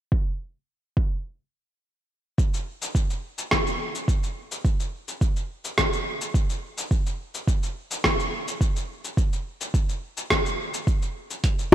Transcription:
0.12 kick loud
0.97 kick loud
2.38 kick loud
2.38 shaker soft
2.54 shaker soft
2.82 shaker medium
2.95 kick medium
2.95 shaker medium
3.10 shaker soft
3.38 shaker medium
3.51 kick medium
3.51 cross-stick medium
3.51 shaker medium
3.67 shaker soft
3.95 shaker medium
4.08 kick loud
4.08 shaker medium
4.23 shaker soft
4.52 shaker medium
4.65 kick loud
4.65 shaker medium
4.80 shaker soft
5.08 shaker medium
5.21 kick loud
5.21 shaker medium
5.36 shaker soft
5.65 shaker medium
5.78 kick loud
5.78 cross-stick medium
5.78 shaker medium
5.93 shaker soft
6.21 shaker medium
6.34 kick loud
6.34 shaker medium
6.50 shaker soft
6.78 shaker medium
6.91 kick loud
6.91 shaker medium
7.06 shaker soft
7.35 shaker medium
7.48 kick loud
7.48 shaker medium
7.63 shaker soft
7.91 shaker medium
8.04 kick loud
8.04 cross-stick medium
8.04 shaker medium
8.20 shaker soft
8.48 shaker medium
8.61 kick loud
8.61 shaker medium
8.76 shaker soft
9.05 shaker medium
9.17 kick loud
9.17 shaker medium
9.33 shaker soft
9.61 shaker medium
9.74 kick loud
9.74 shaker medium
9.89 shaker soft
10.17 shaker medium
10.30 kick loud
10.30 cross-stick medium
10.30 shaker medium
10.46 shaker soft
10.74 shaker medium
10.87 kick loud
10.87 shaker medium
11.02 shaker soft
11.31 shaker medium
11.44 kick loud
11.44 closed hi-hat soft
11.44 shaker soft
11.59 shaker soft

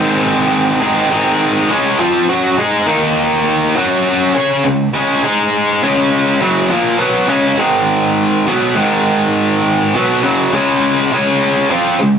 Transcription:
0.00 0.80 G#2 loud
0.00 0.80 D#3 medium
0.00 0.80 G#3 medium
0.00 0.81 C4 loud
0.00 0.80 D#4 medium
0.00 0.79 G#4 loud
0.81 1.09 G#2 medium
0.81 1.09 D#3 medium
0.81 1.10 G#3 medium
0.81 1.10 C4 medium
0.81 1.10 D#4 medium
0.81 1.09 G#4 medium
1.10 1.68 G#2 medium
1.10 1.68 D#3 medium
1.10 1.69 G#3 medium
1.10 1.69 C4 medium
1.10 1.69 D#4 medium
1.10 1.69 G#4 medium
1.70 1.99 C#3 medium
1.70 1.99 G#3 loud
1.70 1.99 C#4 loud
1.99 2.28 F3 medium
1.99 2.28 C4 medium
1.99 2.29 F4 loud
2.29 2.58 F#3 medium
2.29 2.58 C#4 loud
2.29 2.58 F#4 loud
2.58 2.87 G#3 medium
2.58 2.87 D#4 medium
2.58 2.88 G#4 loud
2.87 3.75 D#3 medium
2.87 3.75 A#3 loud
2.87 3.76 D#4 medium
3.76 4.34 F#3 medium
3.76 4.33 C#4 medium
3.76 4.35 F#4 medium
4.35 4.64 C#4 medium
4.35 4.64 G#4 medium
4.35 4.64 C#5 loud
4.65 4.88 C#3 medium
4.65 4.88 G#3 medium
4.94 5.23 C#3 medium
4.94 5.22 G#3 medium
4.94 5.23 C#4 loud
5.23 5.81 G#3 medium
5.23 5.81 D#4 medium
5.23 5.82 G#4 loud
5.82 6.40 C#3 loud
5.82 6.40 G#3 loud
5.82 6.41 C#4 loud
6.41 6.69 F#2 medium
6.41 6.70 C#3 loud
6.41 6.70 F#3 loud
6.70 6.98 A#2 medium
6.70 6.99 F3 loud
6.70 6.99 A#3 loud
6.99 7.28 B2 medium
6.99 7.28 F#3 medium
6.99 7.28 B3 medium
7.28 7.57 C#3 medium
7.28 7.58 G#3 medium
7.28 7.58 C#4 loud
7.58 8.46 G#2 loud
7.58 8.46 D#3 medium
7.58 8.46 G#3 loud
8.47 8.76 B2 medium
8.47 8.76 F#3 medium
8.47 8.76 B3 medium
8.75 9.93 G#2 loud
8.75 9.93 D#3 medium
8.75 9.93 G#3 loud
9.95 10.23 B2 loud
9.95 10.23 F#3 medium
9.95 10.23 B3 loud
10.23 10.52 F#2 medium
10.23 10.52 C#3 medium
10.23 10.52 F#3 medium
10.53 11.11 C#3 loud
10.53 11.11 G#3 medium
10.53 11.11 C#4 medium
11.12 11.69 C#3 medium
11.12 11.70 G#3 medium
11.12 11.70 C#4 loud
11.70 11.99 F3 medium
11.70 11.99 C4 medium
11.70 11.99 F4 medium
11.99 12.19 C#3 medium
11.99 12.19 G#3 medium

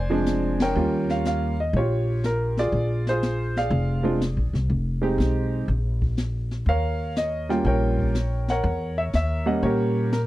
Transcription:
0.00 0.72 F1 medium
0.00 0.73 C5 medium
0.00 0.73 D5 medium
0.00 0.63 G#5 medium
0.10 0.72 F3 medium
0.10 0.73 G#3 medium
0.10 0.73 C4 medium
0.10 0.73 D4 medium
0.26 snare medium
0.26 hi-hat pedal medium
0.60 1.56 A#4 medium
0.60 1.56 C#5 medium
0.60 1.12 G5 medium
0.60 snare medium
0.60 ride medium
0.76 1.70 D#2 medium
0.76 1.52 G3 medium
0.76 1.52 A#3 medium
0.76 1.52 C#4 medium
0.76 1.53 F4 medium
0.76 brush sweep soft
1.09 1.25 F5 medium
1.09 snare soft
1.25 1.60 F5 medium
1.25 snare medium
1.25 hi-hat pedal medium
1.60 1.76 D#5 medium
1.73 2.69 A#1 medium
1.73 2.22 C#5 medium
1.73 brush sweep soft
1.78 2.58 F4 medium
1.78 2.71 G4 medium
2.24 2.59 A#4 medium
2.24 snare medium
2.24 hi-hat pedal soft
2.57 3.09 F4 medium
2.57 3.08 G#4 medium
2.57 3.04 D5 medium
2.57 snare soft
2.72 3.67 A#1 medium
2.72 brush sweep soft
3.07 4.03 F4 medium
3.07 3.57 G#4 medium
3.07 3.58 C5 medium
3.07 snare medium
3.22 snare medium
3.22 hi-hat pedal soft
3.56 4.52 G#4 medium
3.56 4.52 D5 medium
3.56 4.03 F5 medium
3.56 snare soft
3.70 4.33 F1 medium
3.70 brush sweep soft
4.03 4.19 G#3 medium
4.03 4.19 C4 medium
4.03 4.19 D4 medium
4.03 4.19 F4 medium
4.21 snare medium
4.21 hi-hat pedal medium
4.37 4.52 A#1 medium
4.53 4.69 C2 medium
4.53 snare soft
4.70 5.16 F1 medium
4.70 brush sweep soft
5.02 5.65 G#3 medium
5.02 5.65 C4 medium
5.02 5.65 D#4 medium
5.02 5.65 G4 medium
5.18 5.65 B1 medium
5.18 snare medium
5.18 hi-hat pedal medium
5.68 6.63 A#1 medium
5.68 brush sweep soft
6.02 kick medium
6.17 snare medium
6.17 hi-hat pedal soft
6.51 snare soft
6.66 7.61 D#2 medium
6.66 7.63 A#4 medium
6.66 7.63 C#5 medium
6.66 7.14 F5 medium
6.66 brush sweep soft
7.16 7.48 D#5 medium
7.16 snare medium
7.16 hi-hat pedal medium
7.49 8.12 G3 medium
7.49 8.12 A#3 medium
7.49 8.12 C#4 medium
7.49 8.12 F4 medium
7.49 7.65 G5 medium
7.49 snare soft
7.65 8.60 A#1 medium
7.65 8.50 A#4 medium
7.65 8.50 C#5 medium
7.65 8.51 G5 medium
7.65 brush sweep medium
7.99 kick medium
8.14 snare medium
8.14 hi-hat pedal medium
8.48 9.45 A#4 medium
8.48 9.44 C#5 medium
8.48 9.00 F#5 medium
8.48 snare soft
8.64 9.10 E2 medium
8.64 brush sweep medium
8.98 9.03 E5 medium
9.13 9.59 D#2 medium
9.13 9.49 E5 medium
9.13 snare medium
9.13 hi-hat pedal medium
9.46 10.09 G3 medium
9.46 10.09 A#3 medium
9.46 10.09 C#4 medium
9.46 9.64 D#5 medium
9.46 10.09 F#5 medium
9.63 10.27 A#2 medium
9.63 10.27 G4 medium
9.63 10.11 A#4 medium
9.63 10.09 C#5 medium
9.63 brush sweep soft
10.12 10.20 A#4 medium
10.12 snare medium
10.12 hi-hat pedal soft

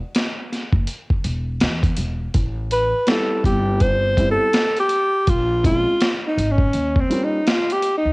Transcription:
0.15 snare loud
0.15 closed hi-hat medium
0.53 snare soft
0.53 closed hi-hat medium
0.73 0.84 F#1 medium
0.73 kick medium
0.87 closed hi-hat medium
1.10 kick medium
1.24 1.63 E1 medium
1.24 closed hi-hat medium
1.60 1.90 E2 medium
1.60 snare loud
1.60 closed hi-hat medium
1.83 kick medium
1.83 closed hi-hat medium
1.97 2.26 E1 medium
1.97 closed hi-hat medium
2.34 2.91 A1 medium
2.34 kick loud
2.34 closed hi-hat medium
2.71 3.11 B4 loud
2.71 closed hi-hat medium
3.07 4.11 G3 medium
3.07 4.12 B3 medium
3.07 4.12 C4 medium
3.07 4.12 E4 medium
3.07 3.45 A4 medium
3.07 snare loud
3.07 closed hi-hat medium
3.44 4.35 G1 medium
3.44 3.83 G4 medium
3.44 kick medium
3.44 closed hi-hat medium
3.80 4.30 C5 loud
3.80 kick medium
3.80 closed hi-hat medium
4.17 4.45 G3 medium
4.17 4.46 B3 medium
4.17 4.46 C4 medium
4.17 4.46 E4 medium
4.17 kick medium
4.17 closed hi-hat medium
4.31 4.76 A4 loud
4.53 snare loud
4.53 closed hi-hat medium
4.77 5.31 G4 loud
4.77 closed hi-hat soft
4.89 closed hi-hat medium
5.27 5.84 A#1 loud
5.27 5.65 F4 medium
5.27 kick loud
5.27 closed hi-hat medium
5.63 5.91 G#3 medium
5.63 5.92 C4 soft
5.63 5.92 C#4 soft
5.63 5.93 F4 medium
5.63 6.22 F4 medium
5.63 kick medium
5.63 closed hi-hat medium
6.01 snare loud
6.01 closed hi-hat medium
6.27 6.53 D#4 medium
6.38 6.66 G#1 medium
6.38 closed hi-hat medium
6.51 7.01 C#4 medium
6.58 kick medium
6.73 7.02 D#2 medium
6.73 closed hi-hat medium
6.96 kick medium
7.00 7.25 C4 medium
7.10 7.38 G3 medium
7.10 7.38 A#3 medium
7.10 7.39 C#4 medium
7.10 7.39 F4 medium
7.10 closed hi-hat medium
7.24 7.50 D#4 medium
7.47 7.74 F4 medium
7.47 snare loud
7.47 closed hi-hat medium
7.70 7.96 G4 loud
7.70 closed hi-hat soft
7.82 closed hi-hat medium
7.97 8.13 D#4 medium
8.05 8.13 D#2 medium

